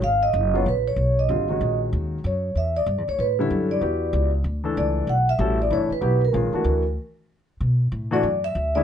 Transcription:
0.02 upright bass G#1, vibraphone F5
0.23 vibraphone D#5
0.33 upright bass F#1
0.53 grand piano C#3 F#3 B3 F4, vibraphone C#5
0.66 upright bass A#1, vibraphone B4
0.88 vibraphone C#5
0.96 upright bass B1
1.19 vibraphone D#5
1.29 upright bass G#1, grand piano D3 G3 C4 F4
1.49 grand piano D#3 G#3 C#4 F#4
1.61 upright bass A#1
1.93 upright bass D#2
2.24 upright bass F#2, vibraphone C#5
2.55 upright bass E2, vibraphone E5
2.77 vibraphone D5
2.86 upright bass G2
2.98 upright bass E2
3.08 upright bass D2, vibraphone C#5
3.19 upright bass A2, vibraphone B4
3.39 grand piano D3 G3 C#4 E4, vibraphone A4
3.50 upright bass F#2
3.71 vibraphone D5
3.81 upright bass E2, grand piano B3 E4 F#4 G4
4.13 upright bass C#2
4.44 upright bass D2
4.64 grand piano E3 A3 D4 A4
4.77 upright bass C#2, vibraphone D5
5.07 upright bass B1, vibraphone F#5
5.29 vibraphone E5
5.39 upright bass A1, grand piano G3 C#4 F#4 A4
5.62 vibraphone D5
5.70 upright bass G1, grand piano E3 A3 D4 E4, vibraphone C#5
5.90 vibraphone B4, muted upright bass stroke
6.01 upright bass B1, grand piano F#3 B3 E4 G4
6.25 vibraphone A#4
6.33 upright bass A#1, grand piano D#3 G#3 C#4 F4
6.53 grand piano E3 A3 D4 F#4, muted upright bass stroke
6.64 upright bass D2
7.61 upright bass B2
7.92 upright bass A2
8.11 grand piano E3 A3 D4 F#4, vibraphone D5
8.23 upright bass F#2
8.44 vibraphone E5
8.55 upright bass D2
8.75 grand piano D3 G#3 C#4 E4, vibraphone D5

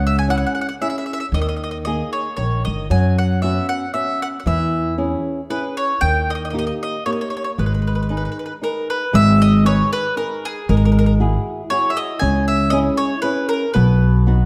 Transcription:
Already playing: upright bass C#2, nylon-string guitar C#3
0.07 mandolin E5
0.19 mandolin G#5
0.28 nylon-string guitar C#4 E4 G#4, mandolin F#5
0.37 mandolin F#5
0.46 mandolin F#5
0.55 mandolin F#5
0.61 mandolin F#5
0.69 mandolin F#5
0.81 nylon-string guitar C#4 E4 G#4, mandolin E5
0.90 mandolin E5
0.98 mandolin E5
1.06 mandolin E5
1.13 mandolin E5
1.20 mandolin E5
1.32 upright bass D#2, nylon-string guitar D#3, mandolin D#5
1.42 mandolin D#5
1.49 mandolin D#5
1.57 mandolin D#5
1.64 mandolin D#5
1.71 mandolin D#5
1.85 nylon-string guitar A#3 D#4 G#4, mandolin D#5
2.13 mandolin C#5
2.37 upright bass A#1, nylon-string guitar D#3, mandolin C#5
2.65 upright bass G1, mandolin D#5
2.90 upright bass F#2, nylon-string guitar F#3, mandolin G#5
3.18 mandolin F#5
3.42 nylon-string guitar B3 C#4 F#4, mandolin E5
3.69 mandolin F#5
3.94 nylon-string guitar B3 C#4 F#4, mandolin E5
4.22 mandolin F#5
4.40 mandolin F#5
4.46 upright bass E2, nylon-string guitar E3, mandolin E5
4.98 nylon-string guitar C#4 E4 G#4
5.50 nylon-string guitar C#4 E4 G#4, mandolin B4
5.77 mandolin C#5
6.01 upright bass D#2, nylon-string guitar D#3, mandolin G5
6.30 mandolin D#5
6.35 mandolin D#5
6.45 mandolin D#5
6.50 nylon-string guitar A#3 D#4, mandolin D#5
6.55 nylon-string guitar G4, mandolin D#5
6.67 mandolin D#5
6.83 mandolin D#5
7.06 nylon-string guitar A#3 D#4 G4, mandolin C#5
7.12 mandolin C#5
7.21 mandolin C#5
7.30 mandolin C#5
7.37 mandolin C#5
7.44 mandolin C#5
7.58 upright bass G#1, nylon-string guitar G#3, mandolin B4
7.66 mandolin B4
7.74 mandolin B4
7.82 mandolin B4
7.87 mandolin B4
7.95 mandolin B4
8.02 mandolin B4
8.09 nylon-string guitar D#4 G#4 B4, mandolin B4
8.17 mandolin B4
8.25 mandolin B4
8.32 mandolin B4
8.39 mandolin B4
8.46 mandolin B4
8.62 nylon-string guitar D#4 G#4 B4, mandolin A#4
8.90 mandolin B4
9.13 upright bass G#1, nylon-string guitar G#3, mandolin E5
9.42 mandolin D#5
9.64 nylon-string guitar D#4 G#4 B4, mandolin C#5
9.93 mandolin B4
10.16 nylon-string guitar D#4 G#4 B4, mandolin A#4
10.45 mandolin G#4
10.69 upright bass G#1, nylon-string guitar G#3, mandolin A#4
10.77 mandolin A#4
10.85 mandolin A#4
10.92 mandolin A#4
10.99 mandolin A#4
11.06 mandolin A#4
11.20 nylon-string guitar E4 F#4 G#4
11.70 nylon-string guitar E4 F#4 G#4, mandolin C#5
11.90 mandolin E5
11.97 mandolin D#5
12.19 upright bass C#2, nylon-string guitar C#3, mandolin G#5
12.48 mandolin E5
12.70 nylon-string guitar C#4 E4 G#4, mandolin D#5
12.97 mandolin C#5
13.22 nylon-string guitar C#4 E4 G#4, mandolin B4
13.49 mandolin A#4
13.74 upright bass B1, nylon-string guitar B2, mandolin B4
14.27 nylon-string guitar B3 D#4 F#4

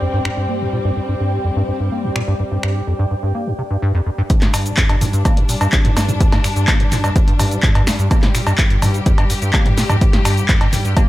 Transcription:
Already playing: string section G2 G3 C4, ambient pad G4 D5 G5
0.01 acid bass F2
0.13 acid bass G2
0.25 acid bass G2, finger snap
0.37 acid bass G2
0.49 acid bass A#3
0.61 acid bass F2
0.73 acid bass A#2
0.85 acid bass G2
0.97 acid bass G2
1.09 acid bass G2
1.20 acid bass G2
1.32 acid bass G#2
1.44 acid bass F2
1.56 acid bass G2
1.68 acid bass G2
1.80 acid bass G2
1.92 acid bass A#3
2.04 acid bass F2
2.16 acid bass A#2, finger snap
2.28 acid bass G2
2.40 acid bass G2
2.52 acid bass G2
2.63 acid bass G2, finger snap
2.75 acid bass G#2
2.87 acid bass F2
2.99 acid bass G2
3.11 acid bass G2
3.23 acid bass G2
3.35 acid bass A#3
3.47 acid bass F2
3.59 acid bass C3
3.71 acid bass G2
3.82 acid bass G2
3.94 acid bass F2
4.06 acid bass F2
4.18 acid bass G2
4.30 acid bass G2, string section G2 G3 D4, kick, closed hi-hat, cabasa
4.41 acid bass G2, snare, clap, closed hi-hat
4.54 acid bass G2, finger snap, open hi-hat, cowbell, cabasa
4.66 acid bass G#2, closed hi-hat, cabasa
4.77 acid bass F2, kick, clap, closed hi-hat, cabasa
4.89 acid bass G2, closed hi-hat, cowbell
5.01 acid bass G2, mid tom, open hi-hat, cabasa
5.13 acid bass G2, closed hi-hat, cabasa
5.25 acid bass A#3, kick, closed hi-hat, cowbell, cabasa
5.37 acid bass F2, closed hi-hat
5.49 acid bass A#2, open hi-hat, cabasa
5.61 acid bass G2, closed hi-hat, cowbell, cabasa
5.72 acid bass G2, kick, clap, closed hi-hat, cabasa
5.85 acid bass G2, closed hi-hat, mid tom
5.97 acid bass G2, snare, open hi-hat, cowbell, cabasa
6.09 acid bass G#2, closed hi-hat, mid tom, cabasa
6.20 acid bass F2, kick, closed hi-hat, cabasa
6.32 acid bass G2, snare, closed hi-hat, cowbell
6.44 acid bass G2, finger snap, open hi-hat, cabasa
6.56 acid bass G2, closed hi-hat, cabasa
6.68 acid bass A#3, kick, clap, closed hi-hat, cowbell, cabasa
6.80 acid bass F2, closed hi-hat
6.91 acid bass A#2, clap, mid tom, open hi-hat, cabasa
7.04 acid bass G2, closed hi-hat, cowbell, cabasa
7.16 acid bass G2, kick, closed hi-hat, cabasa
7.28 acid bass G2, closed hi-hat
7.39 acid bass G2, mid tom, open hi-hat, cowbell, cabasa
7.51 acid bass G#2, closed hi-hat, cabasa
7.63 acid bass F2, kick, clap, closed hi-hat, mid tom, cabasa
7.75 acid bass G2, closed hi-hat, cowbell
7.87 acid bass G2, finger snap, snare, open hi-hat, cabasa
7.99 acid bass G2, closed hi-hat, cabasa
8.11 acid bass A#3, string section G4, kick, closed hi-hat, cowbell, cabasa
8.22 acid bass F2, snare, clap, closed hi-hat
8.35 acid bass A#2, finger snap, open hi-hat, cabasa
8.47 acid bass G2, closed hi-hat, cowbell, cabasa
8.58 acid bass G2, kick, clap, closed hi-hat, cabasa
8.70 acid bass G2, closed hi-hat
8.82 acid bass G2, mid tom, open hi-hat, cowbell, cabasa
8.94 acid bass G#2, closed hi-hat, cabasa
9.06 acid bass F2, kick, closed hi-hat, cabasa
9.18 acid bass G2, closed hi-hat, cowbell
9.30 acid bass G2, open hi-hat, cabasa
9.42 acid bass G2, closed hi-hat, cabasa
9.53 acid bass A#3, kick, clap, closed hi-hat, cowbell, cabasa
9.66 acid bass F2, closed hi-hat, mid tom
9.78 acid bass A#2, snare, open hi-hat, cabasa
9.90 acid bass G2, closed hi-hat, mid tom, cowbell, cabasa
10.01 acid bass G2, kick, closed hi-hat, cabasa
10.13 acid bass G2, snare, closed hi-hat
10.25 acid bass G2, finger snap, open hi-hat, cowbell, cabasa
10.37 acid bass G#2, closed hi-hat, cabasa
10.49 acid bass F2, kick, clap, closed hi-hat, cabasa
10.61 acid bass G2, closed hi-hat, cowbell
10.72 acid bass G2, clap, mid tom, open hi-hat, cabasa
10.85 acid bass G2, closed hi-hat, cabasa
10.97 acid bass A#3, kick, closed hi-hat, cowbell, cabasa

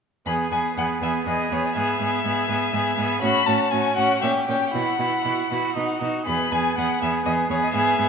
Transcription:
0.26 cello E2, viola B3, violin G#4 B5
0.51 cello E2, viola B3, violin G#4 G#5
0.77 cello E2, viola B3, violin G#4 F#5
1.01 cello E2, viola B3, violin G#4 E5
1.26 cello E2, viola B3, violin G#4 D#5
1.51 cello E2, viola B3, violin G#4 C#5
1.65 violin D#5
1.75 cello G#2, viola B3, violin G#4 E5
1.99 cello G#2, viola B3, violin G#4
2.24 cello G#2, viola B3, violin G#4
2.48 cello G#2, viola B3, violin G#4
2.73 cello G#2, viola B3, violin G#4
2.97 cello G#2, viola B3, violin G#4
3.22 cello A2, viola C#4, violin F#4 B5
3.46 cello A2, viola C#4, violin F#4 A5
3.71 cello A2, viola C#4, violin F#4 G#5
3.95 cello A2, viola C#4, violin F#4 F#5
4.22 cello A#2, viola C#4, violin G4 E5
4.46 cello A#2, viola C#4, violin G4 G5
4.72 cello B2, viola E4, violin F#4 F#5
4.98 cello B2, viola E4, violin F#4
5.24 cello B2, viola E4, violin F#4
5.51 cello B2, viola E4, violin F#4
5.75 cello B2, viola D#4, violin F#4
6.01 cello B2, viola D#4, violin F#4
6.25 cello E2, viola B3, violin G#4 B5
6.52 cello E2, viola B3, violin G#4 G#5
6.77 cello E2, viola B3, violin G#4 F#5
7.01 cello E2, viola B3, violin G#4 E5
7.25 cello E2, viola B3, violin G#4 D#5
7.49 cello E2, viola B3, violin G#4 C#5
7.63 violin D#5
7.74 cello G#2, viola B3, violin G#4 E5
7.99 cello G#2, viola B3, violin G#4

